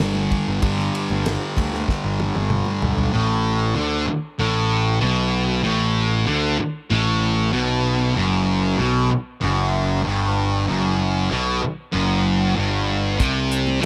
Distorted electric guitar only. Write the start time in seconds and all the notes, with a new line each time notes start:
Already playing: G2 D3 G3
0.60 G2 D3 G3
3.13 A2
3.75 D3
4.07 muted distorted electric guitar stroke
4.39 A2
5.01 B2
5.63 A2
6.27 D3
6.59 muted distorted electric guitar stroke
6.90 A2
7.53 B2
8.16 F#2
8.77 B2
9.09 muted distorted electric guitar stroke
9.41 F#2
10.03 G2
10.67 F#2
11.30 B2
11.62 muted distorted electric guitar stroke
11.92 F#2
12.56 G2
13.19 C3
13.82 E3